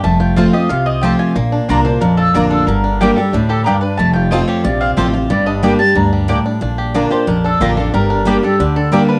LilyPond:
<<
  \new Staff \with { instrumentName = "Mandolin" } { \time 4/4 \key g \minor \tempo 4 = 182 a''8 g''8 f''8 ees''8 f''8 ees''8 g''8 aes''8 | r4. c''8 bes'8 a'8 f'8 a'8 | bes'4. a'8 g'8 a'8 bes'8 b'8 | a''8 g''8 ees''8 cis''8 d''8 f''8 r4 |
d''8 ees''8 g''8 a''8 bes''4. r8 | r4. c''8 bes'8 a'8 f'8 a'8 | bes'4. a'8 g'8 a'8 bes'8 b'8 | }
  \new Staff \with { instrumentName = "Mandolin" } { \time 4/4 \key g \minor r4 <c' f' c'' a''>8 r4. <c' f' c'' a''>8 r8 | r4 <bes f' d'' bes''>8 r4. <bes f' d'' bes''>8 r8 | r4 <bes g' d'' g''>8 r4. <bes g' d'' g''>8 r8 | r4 <c' f' c'' a''>8 r4. <c' f' c'' a''>8 r8 |
r4 <bes g' d'' g''>8 r4. <bes g' d'' g''>8 r8 | r4 <bes f' d'' bes''>8 r4. <bes f' d'' bes''>8 r8 | r4 <bes g' d'' g''>8 r4. <bes g' d'' g''>8 r8 | }
  \new Staff \with { instrumentName = "Five-string banjo" } { \time 4/4 \key g \minor a8 f'8 c'8 g'8 f'8 c'8 g'8 f'8 | bes8 d'8 d'8 bes8 d'8 bes8 d'8 d'8 | d8 d'8 g'8 g8 d'8 g'8 d'8 d'8 | a8 f'8 c'8 g'8 f'8 c'8 g'8 f'8 |
g8 d'8 d'8 g8 d'8 g8 d'8 d'8 | d'8 g'8 d'8 g'8 d'8 d'8 g'8 bes8 | g8 d'8 g'8 g8 d'8 d'8 g8 d'8 | }
  \new Staff \with { instrumentName = "Steel-string acoustic guitar" } { \time 4/4 \key g \minor << { r4 <f a c' f'>8 <c' f'>8 r4 <f a c' f'>4 | r4 <d bes d' f'>8 <d' f'>8 r4 <d bes d' f'>4 | r4 <g bes d' g'>8 <d' g'>8 r2 | r4 <f a c' f'>4 r4 <f a c' f'>8 <c' f'>8 |
r4 <g bes d' g'>8 <d' g'>8 r2 | r4 <d bes d' f'>8 <d' f'>8 r4 <d bes d' f'>8 <d' f'>8 | r4 <g bes d' g'>8 <d' g'>8 r4 <g bes d' g'>4 | } \\ { f,2 c2 | bes,2 f,2 | g,2 a,4 g,4 | f,2 c2 |
g,2 g,4 a,4 | bes,2 f,2 | g,2 d2 | } >> }
  \new Staff \with { instrumentName = "Upright bass" } { \clef bass \time 4/4 \key g \minor f,,2 c,2 | bes,,4 c,4 bes,,4 a,,4 | g,,2 d,2 | f,,2 bes,,4 a,,4 |
g,,2 d,2 | bes,,2 bes,,4 a,,4 | g,,2 d,2 | }
>>